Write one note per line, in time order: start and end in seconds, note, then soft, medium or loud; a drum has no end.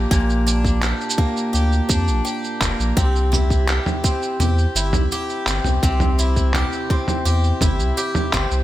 0.00 1.17 A#3 medium
0.00 0.45 D4 medium
0.00 0.81 G4 medium
0.11 0.93 A#1 loud
0.11 2.97 A#2 medium
0.11 kick loud
0.11 cabasa soft
0.30 cabasa soft
0.47 1.88 D4 medium
0.47 cabasa medium
0.65 kick medium
0.65 cabasa soft
0.82 1.53 G4 medium
0.82 clap medium
0.82 cabasa soft
1.01 cabasa soft
1.10 cabasa medium
1.18 2.59 A#3 medium
1.18 kick loud
1.37 cabasa soft
1.53 1.81 D2 loud
1.53 2.24 G4 medium
1.53 cabasa soft
1.72 cabasa soft
1.89 2.09 F2 medium
1.89 3.04 D4 medium
1.89 kick loud
1.89 cabasa medium
2.08 2.21 A#1 medium
2.08 cabasa soft
2.25 3.67 G4 medium
2.25 cabasa soft
2.44 cabasa soft
2.61 2.74 F1 loud
2.61 3.04 A#3 medium
2.61 kick medium
2.61 clap medium
2.61 cabasa medium
2.79 2.93 A#1 medium
2.79 cabasa soft
2.97 3.79 C2 loud
2.97 5.82 C3 medium
2.97 kick loud
2.97 cabasa soft
3.16 cabasa soft
3.32 4.75 E4 medium
3.32 mid tom medium
3.32 cabasa medium
3.50 kick medium
3.50 cabasa soft
3.68 4.39 G4 medium
3.68 clap medium
3.68 cabasa soft
3.86 mid tom medium
3.86 cabasa soft
4.04 5.47 C4 medium
4.04 kick loud
4.04 cabasa medium
4.23 cabasa soft
4.39 4.67 E2 loud
4.39 5.11 G4 medium
4.39 mid tom medium
4.39 cabasa soft
4.58 cabasa soft
4.75 4.94 G1 medium
4.75 6.18 E4 medium
4.75 cabasa medium
4.92 5.06 C2 medium
4.92 mid tom medium
4.92 cabasa soft
5.12 6.54 G4 medium
5.12 cabasa soft
5.29 cabasa soft
5.46 5.60 G1 loud
5.46 6.90 C4 medium
5.46 clap medium
5.46 cabasa medium
5.64 5.78 C2 medium
5.64 mid tom medium
5.64 cabasa soft
5.83 6.65 C2 loud
5.83 8.63 C3 medium
5.83 kick loud
5.83 cabasa soft
6.00 mid tom medium
6.00 cabasa soft
6.19 7.61 E4 medium
6.19 cabasa medium
6.36 kick medium
6.36 cabasa soft
6.54 7.24 G4 medium
6.54 clap medium
6.54 mid tom medium
6.54 cabasa soft
6.72 cabasa soft
6.90 8.33 C4 medium
6.90 kick medium
7.08 mid tom medium
7.08 cabasa soft
7.25 7.52 E2 loud
7.25 7.96 G4 medium
7.25 cabasa soft
7.44 cabasa soft
7.61 7.81 G1 medium
7.61 8.63 E4 medium
7.61 kick medium
7.61 mid tom medium
7.61 cabasa medium
7.79 7.93 C2 medium
7.79 cabasa soft
7.97 8.63 G4 medium
7.97 cabasa soft
8.15 mid tom medium
8.15 cabasa soft
8.33 8.46 G1 loud
8.33 8.63 C4 medium
8.33 kick medium
8.33 clap medium
8.33 cabasa medium
8.51 8.63 C2 loud
8.51 cabasa soft